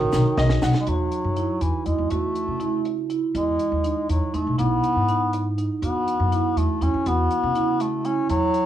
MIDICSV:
0, 0, Header, 1, 6, 480
1, 0, Start_track
1, 0, Tempo, 494234
1, 851, Time_signature, 5, 3, 24, 8
1, 8409, End_track
2, 0, Start_track
2, 0, Title_t, "Marimba"
2, 0, Program_c, 0, 12
2, 125, Note_on_c, 0, 63, 78
2, 405, Note_off_c, 0, 63, 0
2, 610, Note_on_c, 0, 63, 81
2, 749, Note_off_c, 0, 63, 0
2, 845, Note_on_c, 0, 66, 67
2, 1124, Note_off_c, 0, 66, 0
2, 1330, Note_on_c, 0, 64, 60
2, 1608, Note_off_c, 0, 64, 0
2, 1810, Note_on_c, 0, 64, 55
2, 1950, Note_off_c, 0, 64, 0
2, 2054, Note_on_c, 0, 66, 64
2, 2332, Note_off_c, 0, 66, 0
2, 2528, Note_on_c, 0, 64, 66
2, 2808, Note_off_c, 0, 64, 0
2, 3008, Note_on_c, 0, 64, 63
2, 3149, Note_off_c, 0, 64, 0
2, 3254, Note_on_c, 0, 64, 61
2, 3532, Note_off_c, 0, 64, 0
2, 3730, Note_on_c, 0, 63, 63
2, 4009, Note_off_c, 0, 63, 0
2, 4214, Note_on_c, 0, 63, 63
2, 4354, Note_off_c, 0, 63, 0
2, 4452, Note_on_c, 0, 64, 68
2, 4731, Note_off_c, 0, 64, 0
2, 4938, Note_on_c, 0, 63, 69
2, 5215, Note_off_c, 0, 63, 0
2, 5421, Note_on_c, 0, 63, 54
2, 5559, Note_off_c, 0, 63, 0
2, 5658, Note_on_c, 0, 66, 60
2, 5935, Note_off_c, 0, 66, 0
2, 6140, Note_on_c, 0, 64, 61
2, 6417, Note_off_c, 0, 64, 0
2, 6616, Note_on_c, 0, 64, 60
2, 6755, Note_off_c, 0, 64, 0
2, 6858, Note_on_c, 0, 66, 62
2, 7135, Note_off_c, 0, 66, 0
2, 7340, Note_on_c, 0, 64, 73
2, 7616, Note_off_c, 0, 64, 0
2, 7819, Note_on_c, 0, 64, 61
2, 7957, Note_off_c, 0, 64, 0
2, 8058, Note_on_c, 0, 64, 60
2, 8333, Note_off_c, 0, 64, 0
2, 8409, End_track
3, 0, Start_track
3, 0, Title_t, "Grand piano"
3, 0, Program_c, 1, 0
3, 0, Note_on_c, 1, 51, 66
3, 0, Note_on_c, 1, 56, 59
3, 0, Note_on_c, 1, 57, 60
3, 0, Note_on_c, 1, 61, 71
3, 366, Note_on_c, 1, 75, 70
3, 591, Note_off_c, 1, 75, 0
3, 612, Note_on_c, 1, 78, 68
3, 811, Note_off_c, 1, 51, 0
3, 811, Note_off_c, 1, 56, 0
3, 813, Note_off_c, 1, 57, 0
3, 814, Note_off_c, 1, 61, 0
3, 835, Note_off_c, 1, 78, 0
3, 8409, End_track
4, 0, Start_track
4, 0, Title_t, "Bass clarinet"
4, 0, Program_c, 2, 71
4, 0, Note_on_c, 2, 51, 93
4, 607, Note_off_c, 2, 51, 0
4, 776, Note_on_c, 2, 56, 63
4, 858, Note_on_c, 2, 54, 83
4, 872, Note_off_c, 2, 56, 0
4, 1571, Note_on_c, 2, 52, 64
4, 1585, Note_off_c, 2, 54, 0
4, 1805, Note_on_c, 2, 56, 68
4, 1819, Note_off_c, 2, 52, 0
4, 2045, Note_on_c, 2, 57, 82
4, 2060, Note_off_c, 2, 56, 0
4, 3010, Note_off_c, 2, 57, 0
4, 3259, Note_on_c, 2, 56, 79
4, 3939, Note_off_c, 2, 56, 0
4, 3981, Note_on_c, 2, 54, 61
4, 4214, Note_on_c, 2, 57, 72
4, 4229, Note_off_c, 2, 54, 0
4, 4445, Note_off_c, 2, 57, 0
4, 4451, Note_on_c, 2, 59, 89
4, 5375, Note_off_c, 2, 59, 0
4, 5655, Note_on_c, 2, 59, 81
4, 6383, Note_on_c, 2, 57, 73
4, 6398, Note_off_c, 2, 59, 0
4, 6629, Note_on_c, 2, 61, 84
4, 6644, Note_off_c, 2, 57, 0
4, 6874, Note_on_c, 2, 59, 98
4, 6888, Note_off_c, 2, 61, 0
4, 7588, Note_on_c, 2, 57, 76
4, 7603, Note_off_c, 2, 59, 0
4, 7821, Note_on_c, 2, 61, 73
4, 7836, Note_off_c, 2, 57, 0
4, 8055, Note_off_c, 2, 61, 0
4, 8061, Note_on_c, 2, 54, 94
4, 8409, Note_off_c, 2, 54, 0
4, 8409, End_track
5, 0, Start_track
5, 0, Title_t, "Upright bass"
5, 0, Program_c, 3, 32
5, 4, Note_on_c, 3, 33, 84
5, 104, Note_off_c, 3, 33, 0
5, 124, Note_on_c, 3, 35, 90
5, 224, Note_off_c, 3, 35, 0
5, 363, Note_on_c, 3, 35, 96
5, 560, Note_off_c, 3, 35, 0
5, 607, Note_on_c, 3, 35, 83
5, 706, Note_off_c, 3, 35, 0
5, 851, Note_on_c, 3, 40, 89
5, 1045, Note_off_c, 3, 40, 0
5, 1207, Note_on_c, 3, 42, 74
5, 1404, Note_off_c, 3, 42, 0
5, 1565, Note_on_c, 3, 40, 73
5, 1665, Note_off_c, 3, 40, 0
5, 1812, Note_on_c, 3, 40, 65
5, 1909, Note_off_c, 3, 40, 0
5, 1929, Note_on_c, 3, 40, 66
5, 2027, Note_off_c, 3, 40, 0
5, 2050, Note_on_c, 3, 40, 88
5, 2246, Note_off_c, 3, 40, 0
5, 2409, Note_on_c, 3, 49, 61
5, 3091, Note_off_c, 3, 49, 0
5, 3250, Note_on_c, 3, 40, 88
5, 3446, Note_off_c, 3, 40, 0
5, 3611, Note_on_c, 3, 39, 72
5, 3807, Note_off_c, 3, 39, 0
5, 3972, Note_on_c, 3, 40, 67
5, 4071, Note_off_c, 3, 40, 0
5, 4214, Note_on_c, 3, 40, 62
5, 4312, Note_off_c, 3, 40, 0
5, 4337, Note_on_c, 3, 35, 71
5, 4434, Note_off_c, 3, 35, 0
5, 4453, Note_on_c, 3, 35, 78
5, 4649, Note_off_c, 3, 35, 0
5, 4815, Note_on_c, 3, 44, 62
5, 5496, Note_off_c, 3, 44, 0
5, 5654, Note_on_c, 3, 40, 85
5, 5849, Note_off_c, 3, 40, 0
5, 6018, Note_on_c, 3, 42, 75
5, 6211, Note_off_c, 3, 42, 0
5, 6374, Note_on_c, 3, 40, 66
5, 6472, Note_off_c, 3, 40, 0
5, 6616, Note_on_c, 3, 40, 69
5, 6713, Note_off_c, 3, 40, 0
5, 6738, Note_on_c, 3, 40, 71
5, 6834, Note_off_c, 3, 40, 0
5, 6859, Note_on_c, 3, 40, 91
5, 7052, Note_off_c, 3, 40, 0
5, 7220, Note_on_c, 3, 49, 75
5, 7897, Note_off_c, 3, 49, 0
5, 8055, Note_on_c, 3, 40, 87
5, 8248, Note_off_c, 3, 40, 0
5, 8409, End_track
6, 0, Start_track
6, 0, Title_t, "Drums"
6, 119, Note_on_c, 9, 82, 54
6, 120, Note_on_c, 9, 38, 73
6, 217, Note_off_c, 9, 38, 0
6, 217, Note_off_c, 9, 82, 0
6, 363, Note_on_c, 9, 38, 84
6, 460, Note_off_c, 9, 38, 0
6, 481, Note_on_c, 9, 38, 83
6, 578, Note_off_c, 9, 38, 0
6, 604, Note_on_c, 9, 38, 88
6, 604, Note_on_c, 9, 82, 59
6, 701, Note_off_c, 9, 38, 0
6, 701, Note_off_c, 9, 82, 0
6, 722, Note_on_c, 9, 38, 71
6, 819, Note_off_c, 9, 38, 0
6, 844, Note_on_c, 9, 42, 65
6, 941, Note_off_c, 9, 42, 0
6, 1085, Note_on_c, 9, 42, 55
6, 1182, Note_off_c, 9, 42, 0
6, 1325, Note_on_c, 9, 42, 45
6, 1422, Note_off_c, 9, 42, 0
6, 1566, Note_on_c, 9, 42, 68
6, 1663, Note_off_c, 9, 42, 0
6, 1807, Note_on_c, 9, 42, 43
6, 1904, Note_off_c, 9, 42, 0
6, 2045, Note_on_c, 9, 42, 61
6, 2142, Note_off_c, 9, 42, 0
6, 2288, Note_on_c, 9, 42, 51
6, 2385, Note_off_c, 9, 42, 0
6, 2531, Note_on_c, 9, 42, 39
6, 2628, Note_off_c, 9, 42, 0
6, 2770, Note_on_c, 9, 42, 67
6, 2867, Note_off_c, 9, 42, 0
6, 3010, Note_on_c, 9, 42, 42
6, 3107, Note_off_c, 9, 42, 0
6, 3252, Note_on_c, 9, 42, 60
6, 3349, Note_off_c, 9, 42, 0
6, 3490, Note_on_c, 9, 42, 49
6, 3587, Note_off_c, 9, 42, 0
6, 3731, Note_on_c, 9, 42, 46
6, 3828, Note_off_c, 9, 42, 0
6, 3975, Note_on_c, 9, 42, 66
6, 4072, Note_off_c, 9, 42, 0
6, 4214, Note_on_c, 9, 42, 44
6, 4312, Note_off_c, 9, 42, 0
6, 4454, Note_on_c, 9, 42, 65
6, 4551, Note_off_c, 9, 42, 0
6, 4695, Note_on_c, 9, 42, 48
6, 4792, Note_off_c, 9, 42, 0
6, 4936, Note_on_c, 9, 42, 46
6, 5034, Note_off_c, 9, 42, 0
6, 5178, Note_on_c, 9, 42, 69
6, 5275, Note_off_c, 9, 42, 0
6, 5421, Note_on_c, 9, 42, 47
6, 5518, Note_off_c, 9, 42, 0
6, 5659, Note_on_c, 9, 42, 68
6, 5756, Note_off_c, 9, 42, 0
6, 5902, Note_on_c, 9, 42, 56
6, 5999, Note_off_c, 9, 42, 0
6, 6140, Note_on_c, 9, 42, 52
6, 6237, Note_off_c, 9, 42, 0
6, 6381, Note_on_c, 9, 42, 64
6, 6478, Note_off_c, 9, 42, 0
6, 6619, Note_on_c, 9, 42, 45
6, 6716, Note_off_c, 9, 42, 0
6, 6856, Note_on_c, 9, 42, 65
6, 6953, Note_off_c, 9, 42, 0
6, 7097, Note_on_c, 9, 42, 51
6, 7194, Note_off_c, 9, 42, 0
6, 7335, Note_on_c, 9, 42, 46
6, 7432, Note_off_c, 9, 42, 0
6, 7574, Note_on_c, 9, 42, 66
6, 7671, Note_off_c, 9, 42, 0
6, 7816, Note_on_c, 9, 42, 41
6, 7913, Note_off_c, 9, 42, 0
6, 8056, Note_on_c, 9, 42, 64
6, 8153, Note_off_c, 9, 42, 0
6, 8294, Note_on_c, 9, 42, 51
6, 8391, Note_off_c, 9, 42, 0
6, 8409, End_track
0, 0, End_of_file